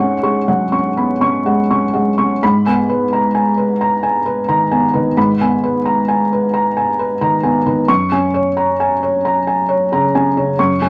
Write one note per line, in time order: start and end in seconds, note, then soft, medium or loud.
0.00 2.38 G#2 medium
0.00 0.14 G#3 soft
0.00 0.38 C#4 soft
0.00 0.48 F#5 soft
0.00 0.23 C#6 soft
0.00 2.39 F#6 soft
0.00 2.41 C#7 soft
0.23 0.62 G#3 soft
0.23 0.63 C#6 soft
0.48 0.72 F#3 soft
0.48 0.87 F#5 soft
0.72 1.11 C#4 soft
0.72 1.11 C#6 soft
0.97 1.21 B3 soft
0.97 1.21 B5 soft
1.21 1.60 C#4 soft
1.21 1.60 C#6 soft
1.46 1.85 G#3 soft
1.46 1.85 F#5 soft
1.71 2.09 C#4 soft
1.71 2.09 C#6 soft
1.94 2.32 G#3 soft
1.94 2.32 F#5 soft
2.18 2.42 C#4 soft
2.18 2.42 C#6 soft
2.43 5.13 G#2 medium
2.43 2.80 B5 medium
2.66 3.03 B3 soft
2.66 3.03 G#5 soft
2.89 3.26 B4 medium
3.13 3.49 A#5 medium
3.35 3.71 G#5 medium
3.58 3.94 B4 soft
3.81 4.17 A#5 soft
4.03 4.39 G#5 medium
4.26 4.62 B4 soft
4.48 4.84 D#3 soft
4.48 4.84 A#5 medium
4.71 5.07 B3 soft
4.71 5.07 G#5 medium
4.94 5.30 D#3 soft
4.94 5.30 B4 soft
5.17 7.85 G#2 medium
5.17 5.53 B5 medium
5.41 5.76 B3 soft
5.41 5.76 G#5 soft
5.64 5.99 B4 soft
5.85 6.21 A#5 medium
6.08 6.44 G#5 medium
6.33 6.67 B4 soft
6.54 6.89 A#5 medium
6.77 7.12 G#5 soft
6.99 7.35 B4 soft
7.21 7.57 D#3 soft
7.21 7.57 A#5 medium
7.43 7.80 B3 soft
7.43 7.80 G#5 soft
7.66 7.89 D#3 soft
7.66 7.89 B4 medium
7.88 10.54 F#2 medium
7.88 8.25 C#6 medium
8.12 8.48 C#4 soft
8.12 8.48 G#5 soft
8.34 8.70 C#5 medium
8.57 8.93 A#5 medium
8.80 9.16 G#5 medium
9.03 9.39 C#5 soft
9.25 9.61 A#5 medium
9.47 9.83 G#5 soft
9.69 10.05 C#5 medium
9.92 10.27 C#3 soft
9.92 10.28 A#5 medium
10.15 10.50 C#4 soft
10.15 10.50 G#5 medium
10.37 10.72 C#3 soft
10.37 10.72 C#5 soft
10.59 10.89 F#2 medium
10.59 10.89 C#6 medium
10.82 10.89 C#4 soft
10.82 10.89 G#5 medium